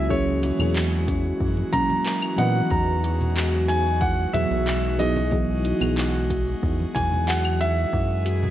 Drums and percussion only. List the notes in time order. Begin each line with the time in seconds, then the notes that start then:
0.10 kick, cabasa
0.43 closed hi-hat, high conga, cabasa
0.60 low conga, cabasa, claves
0.76 clap, cabasa
1.08 kick, closed hi-hat, cabasa
1.25 cabasa
1.41 kick, cabasa
1.57 high conga
1.73 kick, closed hi-hat, low conga, cabasa
1.90 high conga, low conga, cabasa
2.06 clap, cabasa
2.22 claves
2.39 closed hi-hat, high conga, cabasa
2.56 cabasa
2.71 kick, cabasa
3.04 closed hi-hat, cabasa
3.21 low conga, cabasa
3.37 clap, cabasa
3.69 closed hi-hat, cabasa
3.86 cabasa
4.02 kick, cabasa
4.34 closed hi-hat, low conga, cabasa
4.51 low conga, cabasa
4.67 clap, cabasa
5.00 closed hi-hat, high conga, cabasa
5.17 high conga, cabasa
5.32 kick, cabasa
5.65 closed hi-hat, high conga, cabasa
5.81 low conga, cabasa, claves
5.98 clap, cabasa
6.30 kick, closed hi-hat, cabasa
6.47 cabasa
6.63 kick, cabasa
6.80 high conga
6.95 kick, closed hi-hat, low conga, cabasa
7.12 high conga, low conga, cabasa
7.28 clap, cabasa
7.45 claves
7.61 closed hi-hat, high conga, cabasa
7.78 cabasa
7.93 kick, cabasa
8.26 closed hi-hat, cabasa
8.43 low conga, cabasa